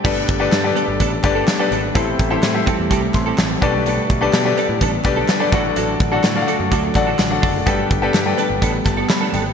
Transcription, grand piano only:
<<
  \new Staff \with { instrumentName = "Grand piano" } { \time 4/4 \key g \major \tempo 4 = 126 << { g''8 r2. r8 | r2 d'''8 c'''8 a''4 | r1 | r2 r8 a''8 fis''8 d''8 |
r2 r8 a''8 b''8 g''8 | } \\ { <d' g' a' b' d''>8 r16 <d' g' a' b' d''>8 <d' g' a' b' d''>4 r16 <d' g' a' b' d''>8 r16 <d' g' a' b' d''>8 r16 | <e' g' a' c'' e''>8 r16 <e' g' a' c'' e''>8 <e' g' a' c'' e''>4 r4 r16 <d' g' a' b' d''>8~ | <d' g' a' b' d''>8 r16 <d' g' a' b' d''>8 <d' g' a' b' d''>4 r16 <d' g' a' b' d''>8 r16 <d' g' a' b' d''>16 <d' fis' a' d'' fis''>8~ | <d' fis' a' d'' fis''>8 r16 <d' fis' a' d'' fis''>8 <d' fis' a' d'' f'' fis''>4 r16 <d' fis' a' d'' fis''>8 r16 <d' fis' a' d'' fis''>8 r16 |
<g' a' b' d'' g''>8 r16 <g' a' b' d'' g''>8 <g' a' b' d'' g''>4 r4. r16 | } >> }
  \new Staff \with { instrumentName = "Grand piano" } { \clef bass \time 4/4 \key g \major g,4. r2 r8 | a,4. r2 b,8~ | b,4 r2 r8 a,8~ | a,4 r2. |
g,4. r2 r8 | }
>>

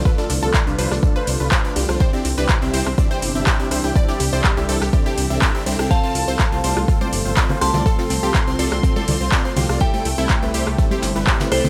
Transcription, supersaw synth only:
\new Staff \with { instrumentName = "Supersaw synth" } { \time 4/4 \key c \major \tempo 4 = 123 <d' f' a'>16 <d' f' a'>16 r16 <d' f' a'>8 <d' f' b'>16 <d' f' c''>16 r16 <d' f' a'>16 <d' f' c''>8 <d' f' b'>16 <d' f' c''>16 <d' f' b'>16 <d' f' g'>16 <d' f' c''>16 | <c' d' e' g' d''>16 <c' d' e' g' d''>16 r16 <c' d' e' g' d''>8 <c' d' e' g' e''>16 <c' d' e' g' g''>16 r16 <c' d' e' g' d''>16 <c' d' e' g' g''>8 <c' d' e' g' e''>16 <c' d' e' g' g''>16 <c' d' e' g' e''>16 <c' d' e' g' c''>16 <c' d' e' g' g''>16 | <c' d' e' g' d''>16 <c' d' e' g' d''>16 r16 <c' d' e' g' d''>8 <c' d' e' g' e''>16 <c' d' e' g' g''>16 r16 <c' d' e' g' d''>16 <c' d' e' g' g''>8 <c' d' e' g' e''>16 <c' d' e' g' g''>16 <c' d' e' g' e''>16 <c' d' e' g' c''>16 <c' d' e' g' g''>16 | <c' f' a'>16 <c' f' a'>16 r16 <c' f' a'>8 <c' f' c''>16 <c' f' d''>16 r16 <c' f' a'>16 <c' f' d''>8 <c' f' c''>16 <c' f' d''>16 <c' f' c''>16 <c' f' g'>16 <c' f' d''>16 |
<c' f' a'>16 <c' f' a'>16 r16 <c' f' a'>8 <c' f' c''>16 <c' f' d''>16 r16 <c' f' a'>16 <c' f' d''>8 <c' f' c''>16 <c' f' d''>16 <c' f' c''>16 <c' f' g'>16 <c' f' d''>16 | <g a c' e' a'>16 <g a c' e' a'>16 r16 <g a c' e' a'>8 <g a c' e' b'>16 <g a c' e' c''>16 r16 <g a c' e' a'>16 <g a c' e' c''>8 <g a c' e' b'>16 <g a c' e' c''>16 <g a c' e' b'>16 <g a c' e' g'>16 <g a c' e' c''>16 | }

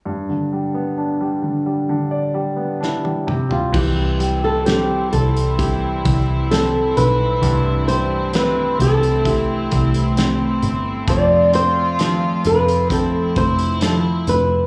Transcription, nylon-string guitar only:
\new Staff \with { instrumentName = "Nylon-string guitar" } { \time 4/4 \key c \major \tempo 4 = 66 r2. e'8. f'16 | g'8. a'16 g'8 a'8 g'4 a'8 b'8~ | b'8 c''8 b'8 a'8 g'4. r8 | d''8 c''4 b'8 a'8 c''8 a'8 b'8 | }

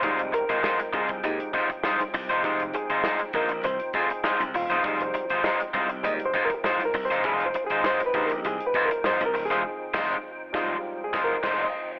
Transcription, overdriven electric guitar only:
\new Staff \with { instrumentName = "Overdriven electric guitar" } { \time 4/4 \key f \minor \tempo 4 = 100 <aes ees' f' c''>16 r8 <aes ees' f' c''>16 <aes ees' f' c''>16 r16 <aes ees' f' c''>16 r8. <aes ees' f' c''>16 r16 <aes ees' f' c''>16 r8 <aes ees' f' c''>16 | <aes ees' f' c''>16 r8 <aes ees' f' c''>16 <aes ees' f' c''>16 r16 <aes ees' f' c''>16 r8. <aes ees' f' c''>16 r16 <aes ees' f' c''>16 r8 <aes ees' f' c''>16 | <aes ees' f' c''>16 r8 <aes ees' f' c''>16 <aes ees' f' c''>16 r16 <aes ees' f' c''>16 r8. <aes ees' f' c''>16 r16 <aes ees' f' c''>16 r8 <aes ees' f' c''>16 | <aes ees' f' c''>16 r8 <aes ees' f' c''>16 <aes ees' f' c''>16 r16 <aes ees' f' c''>16 r8. <aes ees' f' c''>16 r16 <aes ees' f' c''>16 r8 <aes ees' f' c''>16 |
r8 <aes ees' f' c''>8 r8 <aes ees' f' c''>8 r8 <aes ees' f' c''>8 <aes ees' f' c''>8 r8 | }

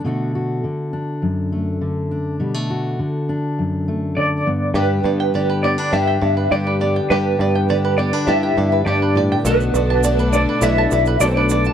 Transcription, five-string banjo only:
\new Staff \with { instrumentName = "Five-string banjo" } { \time 4/4 \key g \major \tempo 4 = 102 r1 | r1 | g'8 d''16 g''16 d''16 b'16 g'16 b'16 d''16 g''16 d''16 b'16 g'16 b'16 d''16 g''16 | g'8 d''16 g''16 d''16 b'16 g'16 b'16 d''16 g''16 d''16 b'16 g'16 b'16 d''16 g''16 |
a'8 d''16 a''16 d''16 b'16 a'16 b'16 d''16 a''16 d''16 b'16 a'16 b'16 d''16 a''16 | }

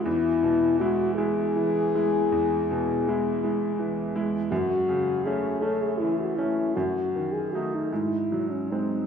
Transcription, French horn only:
\new Staff \with { instrumentName = "French horn" } { \time 12/8 \key e \major \tempo 4. = 53 e'4 fis'8 gis'1~ gis'16 r16 | fis'4 gis'8 a'16 gis'16 e'16 fis'16 e'8 fis'8. gis'16 fis'16 dis'16 e'8. cis'16 dis'8 | }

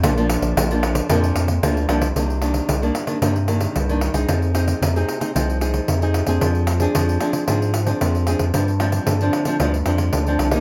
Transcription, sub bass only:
\new Staff \with { instrumentName = "Sub bass" } { \clef bass \time 4/4 \key bes \mixolydian \tempo 4 = 113 bes,,8. bes,,16 bes,,4 f,8 f,8 d,8 c,8 | \key c \minor c,4 c,8 r8 g,4 c,8. c,16 | f,4 f,8 r8 c,4 f,8. f,16 | f,4 f,8 r8 aes,4 f,8. f,16 |
g,4 g,8 r8 d,8 f,8 d,8 c,8 | }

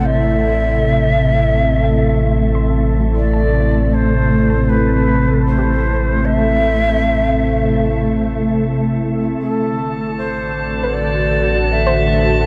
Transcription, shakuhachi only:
\new Staff \with { instrumentName = "Shakuhachi" } { \time 4/4 \key a \dorian \tempo 4 = 77 e''2.~ e''8 r8 | d''4 c''4 b'4 c''4 | e''2 r2 | a'4 c''4 d''4 e''4 | }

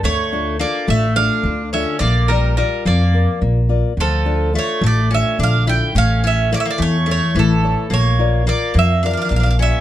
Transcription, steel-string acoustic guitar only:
\new Staff \with { instrumentName = "Steel-string acoustic guitar" } { \time 7/8 \tempo 4 = 107 d8 <d' f' a'>8 <d' f' a'>8 a8 <d' f' a'>8 d8 <d' f' a'>8 | bes8 <f' bes' d''>8 <f' bes' d''>8 f8 <f' bes' d''>8 bes8 <f' bes' d''>8 | d8 <d' f' a'>8 <d' f' a'>8 a8 <d' f' a'>8 d8 <d' f' a'>8 | a8 <e' a' cis''>8 <e' a' cis''>8 e8 <e' a' cis''>8 a8 <e' a' cis''>8 |
bes8 <f' bes' d''>8 <f' bes' d''>8 f8 <f' bes' d''>8 bes8 <f' bes' d''>8 | }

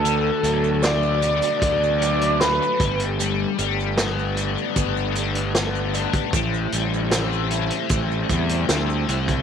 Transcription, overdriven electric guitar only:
\new Staff \with { instrumentName = "Overdriven electric guitar" } { \time 4/4 \key g \major \tempo 4 = 76 d8 fis8 a8 b8 a8 fis8 a8 g8 | g8 g8 b8 d'8 b8 g8 b8 d'8 | a,8 g8 c'8 e'8 c'8 g8 c'8 e'8 | }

